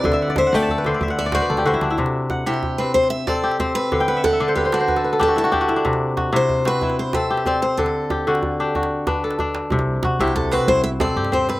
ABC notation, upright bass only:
X:1
M:12/8
L:1/8
Q:3/8=124
K:Clyd
V:1 name="Upright bass" clef=bass
D,,3 D,,3 D,,3 D,,2 D,, | z12 | z12 | z12 |
z12 | C,,2 C, C,,3 C,,3 G,,3 |]